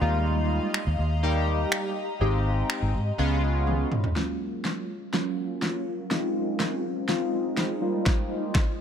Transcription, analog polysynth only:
0.01 0.79 G3 medium
0.01 0.79 A#3 medium
0.01 0.79 D#4 medium
0.01 0.79 F4 loud
1.23 1.92 G3 medium
1.23 1.92 A#3 medium
1.23 1.92 D#4 medium
1.23 1.92 G4 loud
2.20 2.89 G#3 medium
2.20 2.90 C4 medium
2.20 2.90 D#4 medium
2.20 2.90 G4 medium
3.18 3.87 G#3 medium
3.18 3.87 B3 medium
3.18 3.87 C#4 medium
3.18 3.87 F4 medium
4.16 4.85 F#3 medium
4.16 4.85 A#3 medium
4.16 4.85 C#4 medium
4.16 4.85 F4 medium
5.13 5.82 F#3 medium
5.13 5.82 A#3 medium
5.13 5.82 C#4 medium
5.13 5.82 F4 medium
6.11 6.80 G#3 medium
6.11 6.80 C4 medium
6.11 6.80 D#4 medium
6.11 6.80 F4 medium
7.08 7.77 G#3 medium
7.08 7.77 C4 medium
7.08 7.77 D#4 medium
7.08 7.77 F4 loud
7.81 8.60 G3 medium
7.81 8.60 A#3 medium
7.81 8.60 D#4 medium
7.81 8.60 F4 loud

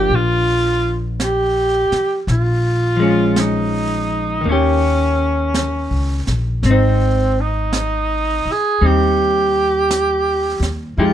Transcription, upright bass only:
0.10 1.86 A#1 medium
1.92 muted upright bass stroke soft
2.27 4.40 A#1 medium
4.44 5.86 D#2 medium
5.90 6.24 C#2 soft
6.28 6.61 A#1 soft
6.63 8.41 G#1 medium
8.45 muted upright bass stroke soft
8.81 10.58 D#2 medium
10.60 10.95 D#2 medium
10.97 11.13 F2 medium

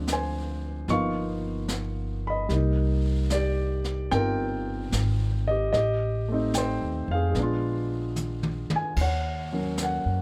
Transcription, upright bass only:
0.00 0.84 D2 medium
0.88 2.46 G1 medium
2.49 4.07 C2 medium
4.12 4.89 G1 medium
4.93 5.69 G#1 medium
5.73 6.77 A1 medium
6.81 7.06 D#2 medium
7.08 7.33 F2 medium
7.35 8.67 A#1 medium
8.73 muted upright bass stroke soft
8.97 10.00 D#2 medium
10.05 10.22 F#2 soft

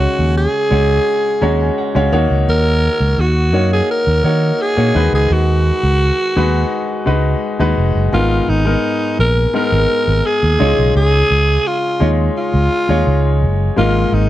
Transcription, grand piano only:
0.00 0.67 C#3 medium
0.00 0.61 G#3 medium
0.00 0.61 C#4 medium
0.00 0.61 F#4 medium
0.00 0.61 C#5 medium
0.70 1.35 G#3 medium
0.70 1.35 C#4 medium
0.70 1.35 F#4 medium
0.70 1.35 C#5 medium
1.42 1.90 G#3 medium
1.42 1.90 C#4 medium
1.42 1.90 F#4 medium
1.42 1.90 C#5 medium
1.42 1.59 A#5 medium
1.61 1.77 G#5 medium
1.78 1.94 F#5 medium
1.95 2.13 G#3 medium
1.95 2.13 C#4 medium
1.95 2.11 F#4 medium
1.95 2.11 C#5 medium
1.95 2.12 F5 medium
2.12 3.15 D#3 medium
2.12 3.40 A#3 medium
2.12 3.40 D#4 medium
2.12 3.40 F#4 medium
2.12 3.40 C#5 loud
3.53 4.17 A#3 medium
3.53 4.17 D#4 medium
3.53 4.18 F#4 medium
3.53 4.18 C#5 medium
4.24 4.72 A#3 medium
4.24 4.72 D#4 medium
4.24 4.72 F#4 medium
4.24 4.73 C#5 medium
4.77 4.95 A#3 medium
4.77 4.93 D#4 medium
4.77 4.94 F#4 medium
4.77 4.96 C#5 medium
4.95 5.97 D#3 medium
4.95 6.22 G#3 medium
4.95 6.22 D#4 medium
4.95 6.23 F#4 medium
4.95 6.23 B4 medium
6.36 7.00 G#3 medium
6.36 7.00 D#4 medium
6.36 7.00 F#4 medium
6.36 7.01 B4 medium
7.06 7.54 G#3 medium
7.06 7.54 D#4 medium
7.06 7.55 F#4 medium
7.06 7.55 B4 medium
7.59 8.07 G#3 medium
7.59 8.08 D#4 medium
7.59 8.08 F#4 medium
7.59 8.08 B4 medium
8.12 9.15 G#2 medium
8.12 8.60 G#3 medium
8.12 8.61 B3 medium
8.12 8.61 D#4 medium
8.12 8.61 A#4 medium
8.65 9.45 G#3 medium
8.65 9.45 B3 medium
8.65 9.45 D#4 medium
8.65 9.46 A#4 medium
9.54 10.58 G#3 medium
9.54 10.60 B3 medium
9.54 10.58 D#4 medium
9.54 10.60 A#4 medium
10.59 11.62 C#3 medium
10.59 11.87 G#3 medium
10.59 11.87 D#4 medium
10.59 11.87 F4 medium
10.59 11.88 C#5 medium
12.00 12.80 G#3 medium
12.00 12.80 D#4 medium
12.00 12.81 F4 medium
12.00 12.81 C#5 medium
12.89 13.69 G#3 medium
12.89 13.69 D#4 medium
12.89 13.69 F4 medium
12.89 13.69 C#5 medium
13.76 14.29 G#2 medium
13.76 14.25 G#3 medium
13.76 14.25 A#3 medium
13.76 14.25 D#4 medium
13.76 14.26 A#4 medium

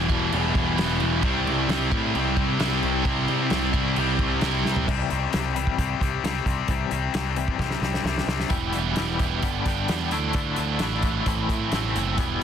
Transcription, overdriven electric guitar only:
0.00 0.12 E3 medium
0.00 0.11 G3 medium
0.08 0.76 E3 medium
0.08 0.76 G3 medium
0.08 0.77 B3 medium
0.08 0.79 E4 medium
0.76 1.20 E3 medium
0.76 1.22 G3 medium
0.76 1.22 B3 medium
0.76 1.25 E4 medium
1.21 1.94 C3 medium
1.21 1.93 G3 medium
1.21 1.92 C4 medium
1.25 1.91 E4 loud
1.91 2.58 C3 medium
1.91 2.60 G3 medium
1.91 2.61 C4 medium
1.91 2.62 E4 medium
2.59 3.03 C3 medium
2.59 3.04 G3 medium
2.59 3.06 C4 medium
2.59 3.07 E4 medium
3.03 3.71 C3 medium
3.03 3.71 G3 medium
3.03 3.72 C4 medium
3.08 3.72 E4 loud
3.73 4.41 C3 medium
3.73 4.41 G3 medium
3.73 4.41 C4 medium
3.73 4.40 E4 medium
4.42 4.86 C3 medium
4.42 4.86 G3 medium
4.42 4.87 C4 medium
4.46 4.88 E4 medium
8.50 8.74 E3 medium
8.50 8.74 G3 medium
8.50 8.75 B3 medium
8.50 8.75 E4 medium
8.75 8.96 E3 medium
8.75 8.96 G3 medium
8.75 8.97 B3 medium
8.75 8.97 E4 medium
8.97 9.19 E3 medium
8.97 9.19 G3 medium
8.97 9.20 B3 medium
8.97 9.21 E4 medium
9.20 9.42 E3 medium
9.20 9.42 G3 medium
9.20 9.43 B3 medium
9.20 9.43 E4 medium
9.43 9.64 G2 medium
9.43 9.66 D3 medium
9.43 9.66 G3 medium
9.43 9.67 B3 medium
9.43 9.67 D4 medium
9.66 9.87 G2 medium
9.66 9.88 D3 medium
9.66 9.88 G3 medium
9.66 9.88 B3 medium
9.66 9.89 D4 medium
9.88 10.10 G2 medium
9.88 10.10 D3 medium
9.88 10.11 G3 medium
9.88 10.11 B3 medium
9.88 10.11 D4 medium
10.11 10.32 D3 medium
10.11 10.33 E3 medium
10.11 10.34 A3 medium
10.11 10.34 D4 medium
10.33 10.57 D3 medium
10.33 10.58 E3 medium
10.33 10.58 A3 loud
10.33 10.59 D4 medium
10.58 10.79 D3 medium
10.58 10.79 E3 medium
10.58 10.80 A3 medium
10.58 10.81 D4 medium
10.80 11.01 D3 medium
10.80 11.01 E3 medium
10.80 11.02 A3 medium
10.80 11.03 D4 loud
11.02 11.25 D3 medium
11.02 11.24 E3 medium
11.02 11.25 A3 medium
11.02 11.26 D4 medium
11.25 11.48 A2 medium
11.25 11.48 E3 medium
11.25 11.49 A3 medium
11.25 11.50 C4 medium
11.25 11.51 E4 medium
11.50 11.71 A2 medium
11.50 11.71 E3 medium
11.50 11.72 A3 medium
11.50 11.73 C4 medium
11.50 11.74 E4 medium
11.72 11.94 A2 medium
11.72 11.95 E3 medium
11.72 11.96 A3 medium
11.72 11.96 C4 loud
11.72 11.97 E4 loud
11.96 12.17 A2 medium
11.96 12.17 E3 medium
11.96 12.18 A3 medium
11.96 12.18 C4 medium
11.96 12.19 E4 medium
12.18 12.40 E3 medium
12.18 12.41 G3 medium
12.18 12.42 B3 medium
12.18 12.42 E4 loud

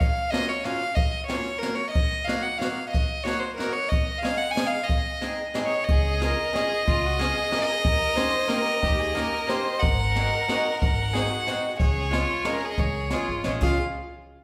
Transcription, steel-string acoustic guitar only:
0.32 0.49 F#3 medium
0.32 0.50 A#3 medium
0.32 0.50 C#4 medium
0.32 0.50 F4 medium
0.64 0.81 F#3 medium
0.64 0.81 A#3 soft
0.64 0.82 C#4 medium
0.64 0.82 F4 medium
1.28 1.47 F#3 medium
1.28 1.47 A#3 medium
1.28 1.47 C#4 medium
1.28 1.47 F4 medium
1.61 1.79 F#3 medium
1.61 1.80 A#3 soft
1.61 1.80 C#4 soft
1.61 1.80 F4 medium
2.27 2.45 F#3 medium
2.27 2.45 A#3 soft
2.27 2.46 D#4 medium
2.27 2.46 F#4 medium
2.59 2.77 F#3 soft
2.59 2.78 A#3 soft
2.59 2.78 D#4 soft
2.59 2.78 F#4 medium
3.25 3.42 F#3 medium
3.25 3.43 A#3 medium
3.25 3.43 D#4 soft
3.25 3.43 F#4 medium
3.58 3.75 F#3 medium
3.58 3.75 A#3 soft
3.58 3.76 D#4 soft
3.58 3.76 F#4 medium
4.22 4.40 G#3 medium
4.22 4.41 C#4 medium
4.22 4.41 D#4 medium
4.22 4.41 G#4 medium
4.56 4.73 G#3 soft
4.56 4.73 C#4 medium
4.56 4.74 D#4 soft
4.56 4.74 G#4 medium
5.21 5.39 G#3 medium
5.21 5.39 C4 soft
5.21 5.40 D#4 medium
5.21 5.40 G#4 medium
5.54 5.72 G#3 medium
5.54 5.72 C4 medium
5.54 5.72 D#4 medium
5.54 5.73 G#4 medium
6.20 6.37 G#3 medium
6.20 6.38 C#4 medium
6.20 6.38 F4 medium
6.20 6.39 G#4 medium
6.53 6.70 G#3 medium
6.53 6.71 C#4 medium
6.53 6.71 F4 soft
6.53 6.71 G#4 medium
7.19 7.36 G#3 medium
7.19 7.36 C#4 medium
7.19 7.36 F4 medium
7.19 7.37 G#4 medium
7.51 7.69 G#3 medium
7.51 7.69 C#4 medium
7.51 7.69 F4 soft
7.51 7.69 G#4 medium
8.16 8.33 A#3 medium
8.16 8.34 C#4 medium
8.16 8.34 D#4 medium
8.16 8.34 G4 medium
8.48 8.66 A#3 medium
8.48 8.66 C#4 medium
8.48 8.66 D#4 medium
8.48 8.67 G4 medium
9.15 9.33 A#3 medium
9.15 9.33 C#4 medium
9.15 9.33 D#4 medium
9.15 9.33 G4 medium
9.47 9.66 A#3 medium
9.47 9.66 C#4 medium
9.47 9.66 D#4 medium
9.47 9.67 G4 medium
10.15 10.33 G#3 medium
10.15 10.33 C4 soft
10.15 10.33 D#4 medium
10.15 10.34 F#4 medium
10.48 10.65 G#3 medium
10.48 10.66 C4 medium
10.48 10.66 D#4 medium
10.48 10.66 F#4 medium
11.13 11.31 G#3 medium
11.13 11.31 C4 soft
11.13 11.31 D#4 medium
11.13 11.31 F#4 medium
11.47 11.64 G#3 medium
11.47 11.64 C4 medium
11.47 11.64 D#4 medium
11.47 11.64 F#4 medium
12.11 12.28 G#3 medium
12.11 12.29 C#4 medium
12.11 12.29 F4 medium
12.11 12.30 G#4 medium
12.45 12.62 G#3 medium
12.45 12.62 C#4 medium
12.45 12.63 F4 medium
12.45 12.63 G#4 medium
13.11 13.28 G#3 medium
13.11 13.29 C#4 medium
13.11 13.29 F4 medium
13.11 13.29 G#4 medium
13.44 13.62 G#3 medium
13.44 13.62 C#4 medium
13.44 13.62 F4 soft
13.44 13.61 G#4 medium
13.62 13.78 G#3 medium
13.62 13.77 C#4 soft
13.62 13.77 F4 medium
13.62 13.77 G#4 medium

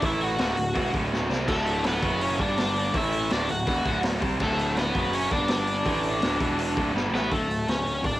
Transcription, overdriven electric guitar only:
0.06 0.21 E4 medium
0.06 0.23 E5 medium
0.23 0.90 F#4 medium
0.23 0.95 F#5 medium
1.49 1.83 A3 medium
1.49 1.86 A4 medium
1.87 2.20 B3 medium
1.87 2.23 B4 medium
2.22 2.39 C#4 medium
2.22 2.39 C#5 medium
2.40 2.90 D4 medium
2.40 2.97 D5 medium
2.96 3.29 E4 medium
2.96 3.32 E5 loud
3.32 3.48 D4 medium
3.32 3.50 D5 medium
3.51 4.00 F#4 medium
3.51 4.01 F#5 loud
4.43 4.75 A3 medium
4.43 4.78 A4 medium
4.78 5.11 B3 medium
4.78 5.15 B4 loud
5.14 5.30 C#4 medium
5.14 5.32 C#5 loud
5.32 5.48 D4 medium
5.32 5.50 D5 medium
5.51 6.92 D4 medium
5.51 6.92 D5 medium
7.15 7.31 B3 medium
7.15 7.32 B4 medium
7.32 7.66 A3 medium
7.32 7.69 A4 medium
7.69 8.02 C#4 medium
7.69 8.06 C#5 medium
8.06 8.20 D4 medium
8.06 8.20 D5 medium

